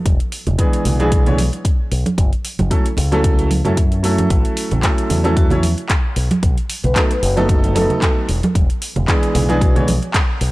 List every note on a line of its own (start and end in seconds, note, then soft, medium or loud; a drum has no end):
0.06 0.18 E1 medium
0.06 kick loud
0.06 closed hi-hat medium
0.20 closed hi-hat soft
0.32 open hi-hat medium
0.47 0.57 E1 medium
0.47 closed hi-hat soft
0.47 low conga medium
0.58 0.96 E3 medium
0.58 0.96 G#3 medium
0.58 0.96 B3 medium
0.58 0.96 D4 medium
0.58 0.97 G#4 medium
0.58 kick medium
0.58 closed hi-hat medium
0.73 closed hi-hat soft
0.85 1.49 B1 medium
0.85 open hi-hat medium
0.85 low conga medium
1.00 1.23 E3 medium
1.00 1.23 G#3 medium
1.00 1.23 B3 medium
1.00 1.23 D4 medium
1.00 1.23 G#4 loud
1.00 closed hi-hat soft
1.00 high conga soft
1.12 kick loud
1.12 closed hi-hat medium
1.26 1.37 E3 medium
1.26 1.37 G#3 medium
1.26 1.37 B3 medium
1.26 1.38 D4 medium
1.26 1.38 C#5 medium
1.26 closed hi-hat soft
1.26 low conga medium
1.38 open hi-hat medium
1.38 high conga medium
1.53 closed hi-hat soft
1.65 kick medium
1.65 closed hi-hat medium
1.92 2.03 B1 medium
1.92 open hi-hat medium
2.06 closed hi-hat soft
2.06 high conga medium
2.18 2.30 F#1 medium
2.18 kick loud
2.18 closed hi-hat medium
2.33 closed hi-hat soft
2.45 open hi-hat loud
2.59 2.69 F#1 medium
2.59 closed hi-hat soft
2.59 high conga medium
2.59 low conga medium
2.71 2.84 F#3 medium
2.71 2.84 A3 medium
2.71 2.84 C#4 medium
2.71 2.84 E4 medium
2.71 2.85 A4 medium
2.71 kick medium
2.71 closed hi-hat medium
2.86 closed hi-hat medium
2.97 3.61 C#2 medium
2.97 open hi-hat medium
2.97 low conga medium
3.12 3.48 F#3 medium
3.12 3.48 A3 medium
3.12 3.48 C#4 medium
3.12 3.48 E4 medium
3.12 3.48 A4 loud
3.12 closed hi-hat soft
3.12 high conga soft
3.24 kick loud
3.24 closed hi-hat medium
3.39 closed hi-hat soft
3.51 open hi-hat medium
3.51 high conga medium
3.65 4.27 F#2 medium
3.65 3.76 F#3 medium
3.65 3.76 A3 medium
3.65 3.76 C#4 medium
3.65 3.76 E4 medium
3.65 3.76 A4 medium
3.65 closed hi-hat soft
3.65 low conga medium
3.77 kick medium
3.77 closed hi-hat medium
3.92 closed hi-hat soft
4.03 4.80 F#3 medium
4.03 4.80 A3 medium
4.03 4.81 C#4 medium
4.03 4.81 E4 medium
4.03 4.81 A4 medium
4.03 open hi-hat medium
4.18 closed hi-hat soft
4.18 high conga medium
4.30 4.42 A1 medium
4.30 kick loud
4.30 closed hi-hat medium
4.45 closed hi-hat soft
4.57 open hi-hat loud
4.71 4.81 A1 medium
4.71 closed hi-hat soft
4.71 low conga medium
4.83 5.21 F#3 medium
4.83 5.21 A3 medium
4.83 5.21 C#4 medium
4.83 5.21 E4 medium
4.83 5.21 A4 medium
4.83 kick medium
4.83 clap loud
4.83 closed hi-hat medium
4.98 closed hi-hat soft
5.10 5.74 E2 medium
5.10 open hi-hat loud
5.10 high bongo soft
5.10 low conga medium
5.24 5.47 F#3 medium
5.24 5.47 A3 medium
5.24 5.48 C#4 medium
5.24 5.48 E4 medium
5.24 5.48 A4 loud
5.24 closed hi-hat soft
5.24 high conga medium
5.37 5.51 F#4 medium
5.37 kick loud
5.37 closed hi-hat medium
5.50 5.62 F#3 medium
5.50 5.62 A3 medium
5.50 5.62 C#4 medium
5.50 5.62 E4 medium
5.50 5.62 C#5 medium
5.50 closed hi-hat soft
5.50 low conga medium
5.63 open hi-hat medium
5.63 high conga medium
5.78 closed hi-hat soft
5.89 kick loud
5.89 clap loud
5.89 closed hi-hat medium
6.16 6.28 B1 medium
6.16 open hi-hat loud
6.31 closed hi-hat medium
6.31 high conga medium
6.43 6.55 B1 medium
6.43 kick loud
6.43 closed hi-hat medium
6.58 closed hi-hat soft
6.70 open hi-hat loud
6.84 6.94 B1 medium
6.84 6.96 B4 medium
6.84 closed hi-hat soft
6.84 low conga medium
6.96 7.09 F#3 medium
6.96 7.09 A3 medium
6.96 7.09 B3 medium
6.96 7.09 D#4 medium
6.96 7.09 A4 medium
6.96 kick loud
6.96 clap loud
6.96 closed hi-hat medium
7.11 7.18 B4 medium
7.11 closed hi-hat soft
7.22 7.86 F#1 medium
7.22 7.32 B4 medium
7.22 open hi-hat loud
7.37 7.72 F#3 medium
7.37 7.73 A3 medium
7.37 7.73 B3 medium
7.37 7.73 D#4 medium
7.37 7.73 A4 loud
7.37 closed hi-hat soft
7.37 high conga medium
7.49 kick loud
7.49 closed hi-hat medium
7.64 closed hi-hat soft
7.75 8.27 F#3 medium
7.75 8.27 A3 medium
7.75 8.27 B3 medium
7.75 8.27 D#4 medium
7.75 7.85 A4 medium
7.75 8.27 A4 loud
7.75 open hi-hat loud
7.75 high conga medium
7.90 7.98 A4 medium
7.90 closed hi-hat soft
7.90 low conga medium
8.02 kick loud
8.02 clap loud
8.02 closed hi-hat medium
8.29 8.41 E1 medium
8.29 open hi-hat loud
8.43 closed hi-hat medium
8.43 high conga medium
8.55 8.67 E1 medium
8.55 kick loud
8.55 closed hi-hat medium
8.70 closed hi-hat soft
8.82 open hi-hat loud
8.96 9.06 E1 medium
8.96 closed hi-hat soft
8.96 low conga medium
9.08 9.45 E3 medium
9.08 9.46 G#3 medium
9.08 9.46 B3 medium
9.08 9.46 D4 medium
9.08 9.46 G#4 medium
9.08 kick loud
9.08 clap loud
9.08 closed hi-hat medium
9.23 closed hi-hat soft
9.35 9.98 B1 medium
9.35 open hi-hat loud
9.35 high bongo soft
9.35 low conga medium
9.49 9.72 E3 medium
9.49 9.72 G#3 medium
9.49 9.72 B3 medium
9.49 9.72 D4 medium
9.49 9.73 G#4 loud
9.49 closed hi-hat soft
9.49 high conga medium
9.61 9.76 F#4 medium
9.61 kick loud
9.61 closed hi-hat medium
9.75 9.87 E3 medium
9.75 9.87 G#3 medium
9.75 9.87 B3 medium
9.75 9.87 D4 medium
9.75 9.87 C#5 medium
9.75 closed hi-hat soft
9.75 low conga medium
9.88 open hi-hat loud
9.88 high conga medium
10.03 closed hi-hat soft
10.14 kick loud
10.14 clap loud
10.14 closed hi-hat medium
10.41 10.52 B1 medium
10.41 open hi-hat loud